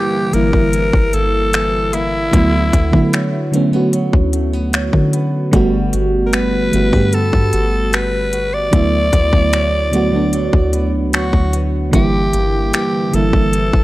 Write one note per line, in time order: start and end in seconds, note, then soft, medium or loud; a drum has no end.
0.00 2.33 G2 medium
0.00 0.31 D3 medium
0.00 0.33 E3 medium
0.00 0.73 E3 medium
0.00 0.34 G3 medium
0.00 0.32 A#3 medium
0.00 0.35 A#3 medium
0.00 0.36 E4 medium
0.00 0.35 G4 loud
0.31 0.53 G1 loud
0.31 0.48 D3 medium
0.31 0.48 E3 medium
0.31 0.49 G3 medium
0.31 1.12 A#3 medium
0.31 0.49 A#3 medium
0.31 1.16 A#4 loud
0.31 closed hi-hat medium
0.36 0.50 E4 medium
0.52 0.92 G1 loud
0.52 1.74 D3 medium
0.52 1.75 E3 medium
0.52 1.76 G3 medium
0.52 1.76 A#3 medium
0.52 kick medium
0.56 1.77 E4 medium
0.73 1.53 E3 medium
0.73 closed hi-hat medium
0.93 1.13 G1 medium
0.93 kick medium
1.13 2.29 G1 loud
1.13 1.92 A#3 medium
1.13 1.95 A4 loud
1.13 closed hi-hat medium
1.53 3.13 E3 medium
1.53 finger snap loud
1.53 closed hi-hat medium
1.93 2.41 A#3 medium
1.93 3.54 E4 loud
1.93 closed hi-hat medium
2.31 2.72 D2 loud
2.31 2.78 D3 loud
2.31 5.83 D3 medium
2.31 2.79 F#3 medium
2.31 2.79 A3 medium
2.31 2.80 B3 medium
2.31 kick loud
2.31 closed hi-hat medium
2.36 2.80 E4 loud
2.73 2.93 D2 loud
2.73 3.53 B3 medium
2.73 kick medium
2.73 closed hi-hat medium
2.91 3.38 D3 medium
2.91 4.09 D3 loud
2.91 3.39 F#3 medium
2.91 3.39 A3 medium
2.91 3.40 B3 medium
2.91 kick medium
2.96 3.40 E4 medium
3.13 3.93 F#3 medium
3.13 finger snap medium
3.13 closed hi-hat medium
3.52 3.68 D3 medium
3.52 3.68 F#3 medium
3.52 3.73 A3 medium
3.52 3.69 A3 medium
3.52 3.69 B3 medium
3.52 closed hi-hat medium
3.56 3.70 C#4 medium
3.71 4.94 D3 medium
3.71 4.95 F#3 medium
3.71 4.95 A3 medium
3.71 4.33 B3 soft
3.71 4.96 B3 medium
3.76 4.97 F#4 medium
3.93 4.73 F#3 medium
3.93 closed hi-hat medium
4.13 4.90 D2 medium
4.13 kick medium
4.33 4.53 A3 medium
4.33 closed hi-hat medium
4.53 5.12 B3 soft
4.73 5.53 F#3 medium
4.73 finger snap loud
4.73 closed hi-hat medium
4.93 5.51 D3 medium
4.93 kick medium
5.13 6.33 B3 medium
5.13 closed hi-hat medium
5.51 5.92 G1 loud
5.51 6.44 D3 loud
5.51 6.44 G3 loud
5.51 8.73 G3 medium
5.51 6.45 A3 loud
5.51 6.45 B3 loud
5.51 kick loud
5.51 closed hi-hat medium
5.56 6.46 F#4 loud
5.93 6.70 G1 loud
5.93 6.73 F#4 medium
5.93 closed hi-hat medium
6.27 6.35 A#4 medium
6.33 7.13 B3 medium
6.33 7.16 B4 loud
6.33 finger snap medium
6.33 closed hi-hat medium
6.71 6.93 G1 loud
6.71 6.88 D3 medium
6.71 6.88 G3 medium
6.71 6.89 A3 medium
6.71 6.89 B3 medium
6.71 6.93 E4 medium
6.71 closed hi-hat medium
6.76 6.90 F#4 medium
6.91 7.32 G2 loud
6.91 8.14 D3 medium
6.91 8.15 G3 medium
6.91 8.15 A3 medium
6.91 8.16 B3 medium
6.91 7.52 F#4 soft
6.91 kick medium
6.96 8.16 G4 medium
7.13 7.93 B3 medium
7.13 7.95 A4 loud
7.13 closed hi-hat medium
7.33 7.52 G2 medium
7.33 kick medium
7.53 8.69 G1 loud
7.53 8.33 F#4 medium
7.53 closed hi-hat medium
7.93 9.12 B3 medium
7.93 8.55 B4 loud
7.93 finger snap loud
7.93 closed hi-hat medium
8.33 11.83 F#4 medium
8.33 closed hi-hat medium
8.54 10.94 D5 loud
8.71 9.12 D2 loud
8.71 9.18 D3 medium
8.71 12.23 D3 medium
8.71 9.18 F#3 medium
8.71 9.19 A3 medium
8.71 9.20 B3 medium
8.71 kick loud
8.71 closed hi-hat medium
8.76 9.20 E4 loud
9.13 9.32 D2 loud
9.13 9.92 B3 medium
9.13 kick medium
9.13 closed hi-hat medium
9.31 10.49 D2 loud
9.31 9.78 D3 medium
9.31 9.79 F#3 medium
9.31 9.79 A3 medium
9.31 9.80 B3 medium
9.31 kick medium
9.36 9.80 E4 medium
9.53 10.32 F#3 medium
9.53 finger snap medium
9.53 closed hi-hat medium
9.91 10.08 D3 medium
9.91 10.08 F#3 medium
9.91 10.09 A3 medium
9.91 10.72 B3 medium
9.91 10.09 B3 medium
9.91 closed hi-hat medium
9.96 10.10 F#4 loud
10.11 11.34 D3 medium
10.11 11.35 F#3 medium
10.11 11.35 A3 medium
10.11 11.36 B3 medium
10.16 11.37 D4 medium
10.33 11.12 F#3 medium
10.33 closed hi-hat medium
10.53 10.95 D2 loud
10.53 kick medium
10.73 11.52 B3 medium
10.73 closed hi-hat medium
10.94 11.15 C#2 loud
11.13 11.32 D2 medium
11.13 12.01 F#3 medium
11.13 11.63 F#4 medium
11.13 finger snap loud
11.13 closed hi-hat medium
11.33 11.91 D2 loud
11.33 kick medium
11.53 12.01 B3 medium
11.53 closed hi-hat medium
11.91 12.32 G1 loud
11.91 13.84 G2 medium
11.91 12.84 D3 loud
11.91 12.84 E3 medium
11.91 12.85 G3 medium
11.91 12.85 A#3 medium
11.91 12.70 G4 loud
11.91 kick loud
11.91 closed hi-hat medium
11.96 12.86 E4 loud
12.33 12.72 G1 loud
12.33 13.12 A#3 medium
12.33 closed hi-hat medium
12.73 13.53 E3 medium
12.73 13.16 G4 medium
12.73 finger snap medium
12.73 closed hi-hat medium
13.11 13.33 G1 medium
13.11 13.28 D3 medium
13.11 13.28 E3 medium
13.11 13.29 G3 medium
13.11 13.84 A#3 medium
13.11 13.29 A#3 medium
13.11 13.84 A4 loud
13.11 closed hi-hat medium
13.16 13.30 E4 medium
13.31 13.72 G1 medium
13.31 13.84 D3 medium
13.31 13.84 E3 medium
13.31 13.84 G3 medium
13.31 13.84 A#3 medium
13.31 kick medium
13.36 13.84 E4 medium
13.53 13.84 E3 medium
13.53 closed hi-hat medium
13.73 13.84 G1 medium
13.73 kick medium